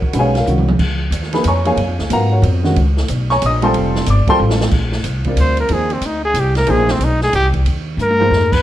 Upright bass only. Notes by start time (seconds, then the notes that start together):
Already playing: A#1
0.13 B1
0.46 C2
0.79 C#2
1.11 D#2
1.45 F2
1.77 F#2
1.87 F2
1.99 C#2
2.10 G#2
2.42 F2
2.76 C#2
3.09 B1
3.42 A#1
3.74 F1
4.07 G1
4.27 muted upright bass stroke
4.40 A1
4.72 A#1
5.04 C2
5.36 D2
5.69 D#2
6.01 D2
6.34 C2
6.68 A#1
6.99 B1
7.33 C2
7.65 D#2
7.97 G2
8.31 F2